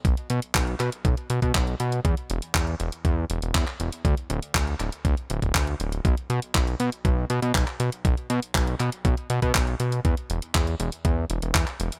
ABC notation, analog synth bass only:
X:1
M:4/4
L:1/16
Q:1/4=120
K:Bm
V:1 name="Analog synth bass" clef=bass
B,,, z B,, z B,,,2 B,, z B,,, z B,, B,, B,,,2 B,,2 | E,, z E,,, z E,,2 E,,, z E,,2 E,,, E,,, E,, z E,,, z | D,, z D,,, z D,,2 D,,, z D,, z D,,, D,,, D,,2 D,,,2 | B,,, z B,, z B,,,2 B,, z B,,,2 B,, B,, B,,, z B,, z |
B,,, z B,, z B,,,2 B,, z B,,, z B,, B,, B,,,2 B,,2 | E,, z E,,, z E,,2 E,,, z E,,2 E,,, E,,, E,, z E,,, z |]